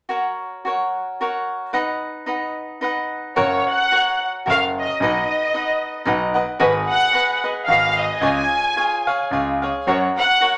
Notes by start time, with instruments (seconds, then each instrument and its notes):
0.09 cavaquinho F#4 A#4 C#5 F#5
0.65 cavaquinho F#4 A#4 C#5 F#5
1.21 cavaquinho F#4 A#4 C#5 F#5
1.73 cavaquinho D#4 B4 D#5 F#5
2.26 cavaquinho D#4 B4 D#5 F#5
2.81 cavaquinho D#4 B4 D#5 F#5
3.36 grand piano F#1, cavaquinho F#4 A#4 C#5 F#5, violin section C#5
3.70 violin section F#5
3.92 cavaquinho F#4 A#4 C#5 F#5
4.46 grand piano F#1, cavaquinho F#4 A#4 C#5 F#5, violin section F5
4.79 violin section D#5
5.00 grand piano B1, cavaquinho D#4 B4 D#5 F#5, violin section D#5
5.54 cavaquinho D#4 B4 D#5 F#5
6.05 grand piano B1, cavaquinho D#4 B4 D#5 F#5
6.34 cavaquinho B4 D#5 F#5
6.59 grand piano G#1, cavaquinho F#4 G#4 B4 D#5, violin section B4
6.89 violin section F#5
7.12 cavaquinho F#4 G#4 B4 D#5
7.44 cavaquinho G#4 B4 D#5
7.65 grand piano G#1, cavaquinho F#4, violin section F5
7.70 cavaquinho G#4 B4 D#5
7.98 violin section D#5
8.17 violin section G#5
8.21 grand piano C#2, cavaquinho F4 G#4 C#5 F5
8.76 cavaquinho F4 G#4 C#5 F5
9.07 cavaquinho G#4 C#5 F5
9.31 grand piano C#2, cavaquinho F4 G#4 C#5 F5
9.62 cavaquinho G#4 C#5 F5
9.87 grand piano F#2, cavaquinho F#4 A#4 C#5 F#5, violin section C#5
10.18 violin section F#5
10.41 cavaquinho F#4 A#4 C#5 F#5